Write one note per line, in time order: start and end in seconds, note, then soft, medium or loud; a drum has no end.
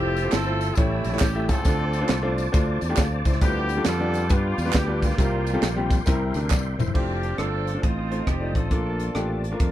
0.00 0.26 F1 medium
0.00 0.14 A3 medium
0.00 0.32 C4 medium
0.00 0.14 E4 medium
0.00 0.33 E4 medium
0.00 0.14 F4 medium
0.00 0.31 G4 loud
0.00 0.14 C5 medium
0.00 0.74 C5 medium
0.00 0.77 E5 medium
0.00 1.64 A5 medium
0.00 1.64 E6 medium
0.17 closed hi-hat medium
0.17 tambourine medium
0.24 0.35 A3 medium
0.24 0.35 E4 medium
0.24 0.36 F4 medium
0.24 0.36 C5 medium
0.32 0.71 G1 medium
0.32 0.74 C4 medium
0.32 0.73 E4 medium
0.32 0.77 A4 loud
0.32 snare loud
0.32 clap medium
0.32 closed hi-hat medium
0.32 tambourine medium
0.45 0.67 A3 medium
0.45 0.67 E4 medium
0.45 0.67 F4 medium
0.45 0.67 C5 medium
0.61 closed hi-hat medium
0.61 tambourine medium
0.74 1.01 A1 loud
0.74 1.46 A2 medium
0.74 1.61 G3 medium
0.74 1.02 A3 medium
0.74 1.61 C#4 medium
0.74 1.20 E4 medium
0.74 1.03 E4 medium
0.74 1.03 G4 medium
0.74 1.03 C#5 medium
0.74 1.65 C#5 medium
0.74 1.65 G5 medium
0.74 kick loud
0.74 closed hi-hat medium
0.74 tambourine medium
1.04 1.19 A#1 medium
1.04 closed hi-hat medium
1.04 tambourine medium
1.12 1.24 A3 medium
1.12 1.24 E4 medium
1.12 1.24 G4 medium
1.12 1.24 C#5 medium
1.12 snare soft
1.19 1.49 A1 medium
1.19 1.46 G4 medium
1.19 kick medium
1.19 snare loud
1.19 clap loud
1.19 closed hi-hat medium
1.19 tambourine loud
1.36 1.56 A3 medium
1.36 1.56 E4 medium
1.36 1.56 G4 medium
1.36 1.56 E5 medium
1.47 1.63 C#2 medium
1.47 2.34 C4 medium
1.47 2.34 F4 medium
1.47 2.37 A4 medium
1.47 kick medium
1.47 closed hi-hat medium
1.47 tambourine medium
1.65 2.03 D2 loud
1.65 2.34 D3 medium
1.65 1.91 A3 medium
1.65 1.91 D4 medium
1.65 1.91 F4 medium
1.65 1.91 C5 medium
1.65 3.40 C5 medium
1.65 6.02 D5 medium
1.65 3.40 A5 medium
1.65 5.15 D6 medium
1.65 kick loud
1.65 closed hi-hat medium
1.65 tambourine medium
1.93 closed hi-hat medium
1.93 tambourine soft
2.01 2.12 A3 medium
2.01 2.12 D4 medium
2.01 2.12 F4 medium
2.01 2.12 C5 medium
2.09 2.47 C2 loud
2.09 snare loud
2.09 clap medium
2.09 closed hi-hat medium
2.09 tambourine medium
2.22 2.43 A3 medium
2.22 2.44 D4 medium
2.22 2.44 F4 medium
2.22 2.44 C5 medium
2.38 closed hi-hat medium
2.38 tambourine medium
2.52 2.78 D2 loud
2.52 2.78 A3 medium
2.52 2.78 D4 medium
2.52 2.78 F4 medium
2.52 2.79 C5 loud
2.52 kick loud
2.52 closed hi-hat medium
2.52 tambourine medium
2.81 2.95 E2 medium
2.81 closed hi-hat medium
2.81 tambourine medium
2.89 3.00 A3 medium
2.89 3.00 D4 medium
2.89 2.97 F4 medium
2.89 2.98 G4 medium
2.97 3.21 D2 loud
2.97 3.24 A4 medium
2.97 3.24 F5 medium
2.97 kick medium
2.97 snare loud
2.97 clap loud
2.97 closed hi-hat medium
2.97 tambourine loud
3.25 3.39 C#2 medium
3.25 3.68 E4 medium
3.25 3.68 C5 medium
3.25 kick medium
3.25 closed hi-hat medium
3.25 tambourine medium
3.33 snare soft
3.41 3.79 D2 loud
3.41 4.10 D3 medium
3.41 3.67 G3 medium
3.41 4.26 B3 medium
3.41 3.67 D4 medium
3.41 3.67 F4 medium
3.41 3.83 G4 loud
3.41 3.67 B4 medium
3.41 5.16 B4 medium
3.41 5.17 G5 medium
3.41 kick loud
3.41 closed hi-hat medium
3.41 tambourine medium
3.69 closed hi-hat medium
3.69 tambourine medium
3.77 3.88 G3 medium
3.77 3.88 D4 medium
3.77 3.88 F4 medium
3.77 3.88 A4 medium
3.85 4.30 F2 medium
3.85 4.30 F4 medium
3.85 4.30 A4 loud
3.85 snare loud
3.85 clap medium
3.85 closed hi-hat medium
3.85 tambourine medium
4.00 4.20 G3 medium
4.00 4.20 D4 medium
4.00 4.20 F4 medium
4.00 4.20 D5 medium
4.14 closed hi-hat medium
4.14 tambourine medium
4.29 4.54 G2 medium
4.29 4.55 G3 medium
4.29 5.15 B3 medium
4.29 4.55 D4 medium
4.29 4.55 F4 medium
4.29 4.75 F4 medium
4.29 4.55 B4 medium
4.29 kick loud
4.29 closed hi-hat medium
4.29 tambourine medium
4.58 4.72 E2 medium
4.58 closed hi-hat medium
4.58 tambourine medium
4.65 4.76 G3 medium
4.65 4.76 D4 medium
4.65 4.77 F4 medium
4.65 4.76 B4 medium
4.65 snare soft
4.73 5.12 D2 loud
4.73 5.03 G4 medium
4.73 kick medium
4.73 snare loud
4.73 clap loud
4.73 closed hi-hat medium
4.73 tambourine loud
4.87 5.08 G3 medium
4.87 5.08 D4 medium
4.87 5.09 F4 medium
4.87 5.09 B4 medium
5.02 5.87 A#3 medium
5.02 5.91 F4 medium
5.02 kick medium
5.02 closed hi-hat medium
5.02 tambourine medium
5.10 snare soft
5.17 5.56 C2 loud
5.17 5.86 C3 medium
5.17 5.43 G3 medium
5.17 5.43 C4 medium
5.17 5.43 F4 medium
5.17 6.93 A#4 medium
5.17 5.44 A#4 medium
5.17 6.93 G5 medium
5.17 6.93 C6 medium
5.17 kick loud
5.17 closed hi-hat medium
5.17 tambourine medium
5.47 closed hi-hat medium
5.47 tambourine medium
5.53 5.65 G3 medium
5.53 5.65 C4 medium
5.53 5.65 F4 medium
5.53 5.65 A4 loud
5.62 6.00 A#1 medium
5.62 snare loud
5.62 clap medium
5.62 closed hi-hat medium
5.62 tambourine medium
5.76 5.97 G3 medium
5.76 5.97 C4 medium
5.76 5.97 F4 medium
5.76 5.97 G4 medium
5.91 kick loud
5.91 closed hi-hat medium
5.91 tambourine medium
6.06 6.31 C2 loud
6.06 6.75 C3 medium
6.06 6.32 G3 medium
6.06 6.32 C4 medium
6.06 6.32 E4 medium
6.06 6.32 A#4 medium
6.06 6.94 E5 medium
6.06 kick loud
6.06 closed hi-hat medium
6.06 tambourine medium
6.34 6.52 D2 medium
6.34 6.50 D4 medium
6.34 6.50 A#4 medium
6.34 closed hi-hat medium
6.34 tambourine medium
6.50 6.75 C2 medium
6.50 6.77 D5 medium
6.50 kick medium
6.50 snare medium
6.50 clap loud
6.50 tambourine loud
6.78 6.92 E1 medium
6.78 7.21 E4 medium
6.78 6.93 C5 medium
6.78 mid tom medium
6.78 tambourine medium
6.88 floor tom medium
6.94 7.32 F1 medium
6.94 9.72 F3 medium
6.94 7.26 A3 medium
6.94 8.69 C4 medium
6.94 7.37 C4 medium
6.94 7.82 D4 medium
6.94 7.26 D4 medium
6.94 7.37 D4 medium
6.94 7.26 F4 medium
6.94 7.36 G4 medium
6.94 7.26 C5 medium
6.94 7.82 C5 medium
6.94 7.82 F5 soft
6.94 7.82 A5 medium
6.94 7.82 D6 medium
6.94 kick medium
6.94 crash medium
7.23 closed hi-hat medium
7.38 7.76 G1 medium
7.38 7.64 A3 medium
7.38 7.80 C4 medium
7.38 7.80 D4 medium
7.38 7.64 D4 medium
7.38 7.65 F4 medium
7.38 7.82 A4 medium
7.38 7.65 C5 medium
7.38 cross-stick medium
7.38 closed hi-hat medium
7.67 closed hi-hat medium
7.74 7.82 A3 medium
7.74 7.82 D4 medium
7.74 7.83 F4 medium
7.74 7.83 C5 medium
7.82 8.21 A1 medium
7.82 8.51 A2 medium
7.82 8.68 C4 medium
7.82 8.70 D#4 medium
7.82 8.27 F4 medium
7.82 8.71 C5 medium
7.82 9.72 A5 soft
7.82 8.71 D#6 medium
7.82 kick medium
7.82 closed hi-hat medium
8.10 8.25 A3 medium
8.10 8.26 D#4 medium
8.10 8.26 F4 medium
8.10 8.26 C5 medium
8.10 closed hi-hat medium
8.27 8.55 F1 medium
8.27 8.56 G4 medium
8.27 kick medium
8.27 cross-stick medium
8.27 closed hi-hat medium
8.40 8.61 A3 medium
8.40 8.61 D#4 medium
8.40 8.62 F4 medium
8.40 8.62 D5 medium
8.55 8.69 A1 medium
8.55 9.41 D4 medium
8.55 9.41 F4 medium
8.55 9.41 A4 medium
8.55 kick medium
8.55 closed hi-hat medium
8.71 9.09 A#1 medium
8.71 9.40 A#2 medium
8.71 9.03 A3 medium
8.71 9.72 A#3 medium
8.71 9.03 D4 medium
8.71 9.72 D4 medium
8.71 9.03 F4 medium
8.71 9.03 A#4 medium
8.71 9.72 D6 medium
8.71 kick medium
8.71 closed hi-hat medium
9.00 closed hi-hat medium
9.14 9.53 A1 medium
9.14 9.41 A3 medium
9.14 9.41 D4 medium
9.14 9.41 F4 medium
9.14 9.41 G4 medium
9.14 cross-stick loud
9.14 closed hi-hat medium
9.44 closed hi-hat medium
9.51 9.71 A3 medium
9.51 9.71 D4 medium
9.51 9.72 F4 medium
9.51 9.72 A#4 medium
9.60 9.72 F2 medium
9.60 kick loud
9.60 closed hi-hat medium